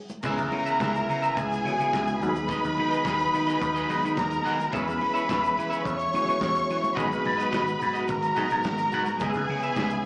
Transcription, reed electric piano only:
0.24 E3 G#3 B3 C#4 G#4
1.64 E3 G#3 B3 C#4 F#4
1.72 G#4
2.21 F#3 G#3 B3 D#4 F#4
2.29 G#4
3.89 F#3 G#3 B3 D4 G#4
3.97 D#4
4.73 E3 G#3 B3 C#4 G#4
6.14 E3 G#3 B3 C#4 F#4
6.21 G#4
6.97 F#3 G#3 B3 D#4 G#4
8.36 F#3 G#3 B3 D#4 G#4
9.20 D#3 G#3 B3 C#4 G#4
9.26 E3

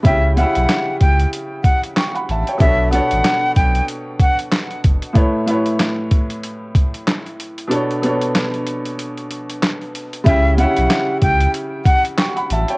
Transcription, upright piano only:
0.02 C#3 C#4 E4 G4
0.07 G5
0.36 C#3 C#4 E4 G4
0.41 E5
1.97 G5 C#6
2.14 F#5 B5
2.31 E5 A5
2.48 C#5 G5
2.57 B2 B3 D4 A4
2.62 C#5
2.91 B2 B3 D4 A4
2.95 C#5
5.13 A2 A3 E4 B4
5.18 C#5
5.46 A2 A3 E4 B4
5.51 C#5
7.67 B2 B3 D4 A4
7.72 C#5
8.02 B2 B3 D4 A4
8.06 C#5
10.24 C#3 C#4 E4 G4
10.28 G5
10.57 C#3 C#4 E4 G4
10.62 E5
12.18 G5 C#6
12.36 F#5 B5
12.52 E5 A5
12.70 C#5 G5

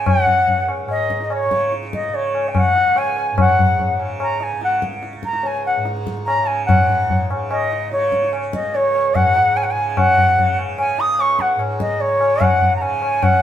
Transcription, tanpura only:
Already playing: C#2 G#2 C#3
0.23 C#2
0.85 G#2
1.46 C#3
2.09 C#3
2.71 C#2
3.32 G#2
3.92 C#3
4.53 C#3
5.16 C#2
5.76 G#2
6.38 C#3
6.69 G#2
7.31 C#3
7.92 C#3
8.52 C#2
9.13 G#2
9.75 C#3
10.36 C#3
10.97 C#2
11.56 G#2
12.17 C#3
12.76 C#3
13.38 C#2

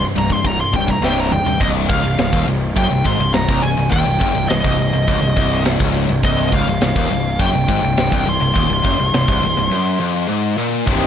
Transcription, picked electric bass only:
0.16 C1
0.44 C1
0.73 C1
1.02 C1
1.61 C1
1.89 C#1
2.04 C1
2.19 C1
2.33 D#1
2.47 C1
2.77 F#1
2.90 C1
3.05 G#1
3.19 C1
3.34 C1
3.48 C1
3.63 C1
3.77 C1
3.92 D#1
4.06 C1
4.21 F#1
4.35 C1
4.50 C1
4.65 C1
4.79 C1
4.93 C1
5.08 C#1
5.23 C1
5.37 C1
5.80 C#1
6.10 C1
6.23 C1
6.52 C#1
6.67 C1
6.81 C1
6.96 D#1
7.10 C1
7.39 F#1
7.53 C1
7.69 G#1
7.83 C1
7.97 C1
8.12 C1
8.25 C1
8.40 C1
8.56 D#1
8.69 C1
8.85 F#1
8.98 C1
9.13 C1
9.28 C1
9.42 C1
9.56 C1
10.87 C1

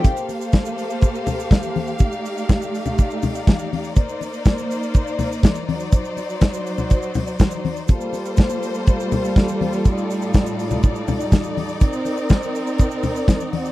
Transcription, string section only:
0.04 A#3 G4 A4 C5 F5
2.00 A3 D#4 D5
3.97 A#3 C5
5.69 F#3 C5
7.89 G3 A#3 F4 A4 C5
9.85 A2 D#4 D5
11.82 C4 A#4
13.53 C4 F#4

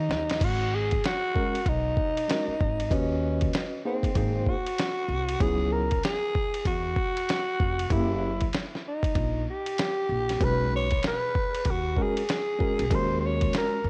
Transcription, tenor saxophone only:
Already playing: D#4
0.44 F#4
0.75 G#4
1.06 F#4
1.68 D#4
2.94 C#4
3.87 C4
4.49 F#4
5.42 G#4
5.72 A#4
6.05 G#4
6.67 F#4
7.92 E4
8.88 D#4
9.50 G4
10.44 B4
10.76 C#5
11.07 B4
11.71 F#4
12.02 G#4
12.95 C5
13.20 C5
13.27 C#5
13.57 A#4

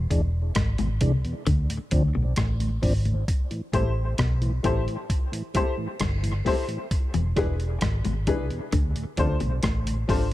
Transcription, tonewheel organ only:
0.10 E3 G#3 D4
0.79 E2 B2
1.01 E3 G#3 D4
1.25 E2 B2
1.70 D2 A2
1.92 F3 C4 D4
2.15 D2 A2
2.60 D2 A2
2.82 F3 C4 D4
3.06 D2 A2
3.51 A2 E3
3.73 G3 A3 C4
4.41 A2 E3
4.63 G3 A3 C4
4.86 A2 E3
5.32 A2 E3
5.54 G3 A3 C4
5.77 A2 E3
6.23 A2 E3
6.45 G3 A3 C4
6.68 A2 E3
7.14 E2 B2
7.36 E3 G#3 D4
8.04 E2 B2
8.27 E3 G#3 D4
8.50 E2 B2
8.96 D2 A2
9.17 F3 C4 D4
9.40 D2 A2
9.86 D2 A2
10.08 F3 C4 D4

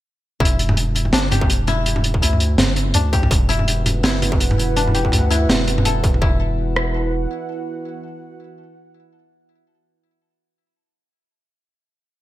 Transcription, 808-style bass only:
0.40 E1
1.13 F#1
1.50 E1
2.22 D2
2.58 F#1
2.95 D2
3.31 E1
4.04 F#1
4.40 E1
5.12 D2
5.49 E1
6.22 E1

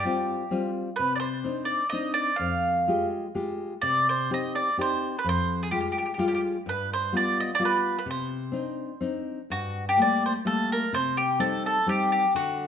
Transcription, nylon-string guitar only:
0.05 G3 C4 F4
0.51 G3 C4 F4
0.99 C3
1.44 C4 D4 D#4
1.93 C4 D4 D#4
2.39 F2
2.88 G#3 F4 G4
3.35 G#3 F4 G4
3.83 C3
4.31 C4 D#4 G4
4.77 C4 D#4 G4
5.24 F2
5.72 G3 G#3 F4
6.18 G3 G#3 F4
6.66 G2
7.12 G3 B3 F4
7.59 G3 B3 F4
8.06 C3
8.52 C4 D4 D#4
9.01 C4 D4 D#4
9.50 G2
9.97 G3 A3 A#3
10.45 G3 A3 A#3
10.93 C3
11.39 G3 C4 D#4
11.86 G3 C4 D#4
12.35 D3

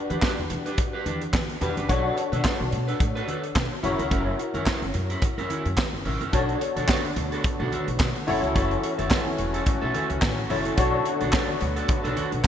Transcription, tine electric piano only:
Already playing: D4 F#4 G4 B4
1.61 D4 F#4 G4 B4
1.88 D4 F#4 A4 C#5
3.83 E4 F#4 A4 C#5
3.90 A#4
6.32 D4 F#4 A4 C#5
8.27 E4 F#4 A4 C#5
10.50 E4 F#4 A4 C#5
10.77 D4 F#4 A4 C#5

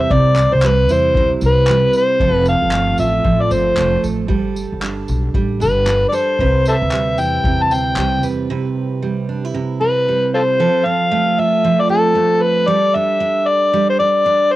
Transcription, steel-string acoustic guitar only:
Already playing: G3 C4 E4 B4
0.11 C3
0.37 C4
0.64 G3
0.90 E4
1.17 C3
1.43 C4
1.70 G3
2.21 F3 A4
2.73 A3
2.98 F4
3.25 F3
3.51 C4
3.77 A3
4.04 A4
4.28 G3 A4
4.82 D4
5.35 G3
5.60 D4
5.86 D4
6.12 A4
6.40 C3 B4
6.93 G3
7.18 E4
7.45 C3
7.71 C4
7.98 G3
8.23 B4
8.50 C3 B4
9.03 G3
9.29 D4
9.45 E4
9.54 C3
9.81 C4
10.09 G3
10.60 F3 A4
10.85 C4
11.12 A3
11.38 F4
11.64 F3
11.89 C4
12.15 A3
12.68 G3 A4
12.95 D4
13.20 D4
13.73 G3
14.00 D4
14.26 D4

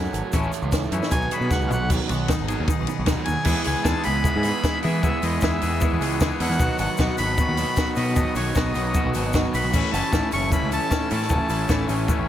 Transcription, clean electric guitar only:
0.13 muted clean electric guitar stroke
0.33 E3 A3 C#4 E4
0.53 muted clean electric guitar stroke
0.72 muted clean electric guitar stroke
0.93 E3 A3 C#4 E4
1.13 muted clean electric guitar stroke
1.32 F#3 B3 F#4 G#4
1.51 muted clean electric guitar stroke
1.69 muted clean electric guitar stroke
1.89 B2
2.08 B3
2.28 D#4
2.49 G#4
2.68 D#4
2.88 B3
3.06 D#4
3.26 F#3
3.44 E3 G#3 B3 E4 G#4
3.62 E3 G#3 B3 E4 G#4
3.83 E3 G#3 B3 E4 G#4
4.03 E3 G#3 B3 E4 G#4
4.23 E3 G#3 B3 E4 G#4
4.43 E3 G#3 B3 E4 G#4
4.62 E3 G#3 B3 E4 G#4
4.82 E3 G#3 B3 E4 G#4
5.02 E3 G#3 B3 E4 G#4
5.21 E3 G#3 B3 E4 G#4
5.40 E3 G#3 B3 E4 G#4
5.61 E3 G#3 B3 E4 G#4
5.80 E3 G#3 B3 E4 G#4
6.00 E3 G#3 B3 E4 G#4
6.20 E3 G#3 B3 E4 G#4
6.39 E3 G#3 B3 E4 G#4
6.59 B2 D#3 F#3 B3 F#4
6.79 B2 D#3 F#3 B3 F#4
6.98 B2 D#3 F#3 B3 F#4
7.18 B2 D#3 F#3 B3 F#4
7.38 B2 D#3 F#3 B3 F#4
7.57 B2 D#3 F#3 B3 F#4
7.77 B2 D#3 F#3 B3 F#4
7.96 B2 D#3 F#3 B3 F#4
8.15 B2 D#3 F#3 B3 F#4
8.35 B2 D#3 F#3 B3 F#4
8.54 B2 D#3 F#3 B3 F#4
8.74 B2 D#3 F#3 B3 F#4
8.94 B2 D#3 F#3 B3 F#4
9.14 B2 D#3 F#3 B3 F#4
9.32 B2 D#3 F#3 B3 F#4
9.53 B2 D#3 F#3 B3 F#4
9.73 A2 E3 A3 C#4 E4
9.93 A2 E3 A3 C#4 E4
10.11 A2 E3 A3 C#4 E4
10.32 A2 E3 A3 C#4 E4
10.50 A2 E3 A3 C#4 E4
10.69 A2 E3 A3 C#4 E4
10.89 A2 E3 A3 C#4 E4
11.09 A2 E3 A3 C#4 E4
11.28 A2 E3 A3 C#4 E4
11.47 A2 E3 A3 C#4 E4
11.68 A2 E3 A3 C#4 E4
11.88 A2 E3 A3 C#4 E4
12.06 A2 E3 A3 C#4 E4

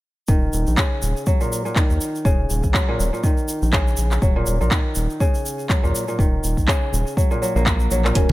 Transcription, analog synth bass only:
0.28 D#1
0.53 D#1
0.67 A#1
1.02 D#1
1.90 D#2
2.25 D#1
2.50 D#1
2.64 A#1
2.99 D#1
3.62 A#1
3.98 A#1
4.22 D#1
4.47 D#1
4.60 A#1
4.96 D#1
5.84 D#2
6.19 D#1
6.43 D#1
6.57 A#1
6.93 D#1
7.55 A#1
7.91 A#1
8.15 D#1

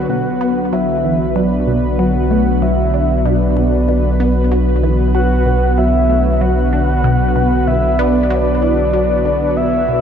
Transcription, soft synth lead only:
0.09 F#5
0.73 E5
1.36 D5
1.99 F#5
2.62 E5
3.25 D5
5.15 F#5
5.78 E5
6.41 F#5
7.67 E5
7.99 D5
9.57 E5

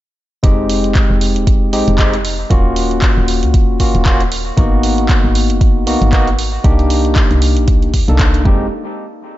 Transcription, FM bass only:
0.44 F1
1.10 F1
1.36 D#1
1.47 F1
1.73 G#1
1.88 F1
2.50 D#1
3.17 D#1
3.43 C#2
3.54 D#1
3.80 F#1
3.94 D#1
4.57 G#1
5.24 G#1
5.50 F#1
5.61 G#1
5.87 B1
6.01 G#1
6.64 C2
7.31 C2
7.57 A#1
7.68 C2
7.94 D#2
8.08 C2
8.45 F1

